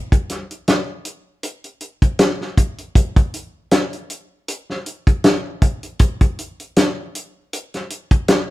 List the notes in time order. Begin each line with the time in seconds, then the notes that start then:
0.12 kick, closed hi-hat
0.29 snare, closed hi-hat
0.51 closed hi-hat
0.68 snare, closed hi-hat
1.05 closed hi-hat
1.43 closed hi-hat
1.64 closed hi-hat
1.81 closed hi-hat
2.02 kick, closed hi-hat
2.19 snare, closed hi-hat
2.41 snare
2.57 kick, closed hi-hat
2.78 closed hi-hat
2.95 kick, closed hi-hat
3.16 kick, closed hi-hat
3.34 closed hi-hat
3.71 snare, closed hi-hat
3.93 closed hi-hat
4.10 closed hi-hat
4.48 closed hi-hat
4.70 snare
4.86 closed hi-hat
5.07 kick, closed hi-hat
5.24 snare, closed hi-hat
5.62 kick, closed hi-hat
5.83 closed hi-hat
5.99 kick, closed hi-hat
6.21 kick, closed hi-hat
6.39 closed hi-hat
6.60 closed hi-hat
6.76 snare, closed hi-hat
7.15 closed hi-hat
7.53 closed hi-hat
7.74 snare, closed hi-hat
7.90 closed hi-hat
8.11 kick, closed hi-hat
8.28 snare, closed hi-hat